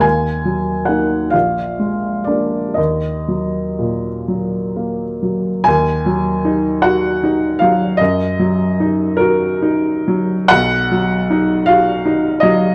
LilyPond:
<<
  \new Staff \with { instrumentName = "Upright piano" } { \time 6/8 \key ees \minor \tempo 4. = 49 aes''4 ges''8 f''4 d''8 | ees''2~ ees''8 r8 | aes''4. ges''4 f''8 | ees''4. bes'4. |
fis''4. f''4 dis''8 | }
  \new Staff \with { instrumentName = "Upright piano" } { \clef bass \time 6/8 \key ees \minor ees,8 ges8 <bes ees'>8 bes,,8 aes8 <bes d'>8 | ees,8 ges8 bes,8 ges8 bes8 ges8 | ees,8 ges8 ees'8 ges'8 ees'8 ges8 | ges,8 ges8 ees'8 ges'8 ees'8 ges8 |
b,,8 fis8 dis'8 fis'8 dis'8 fis8 | }
>>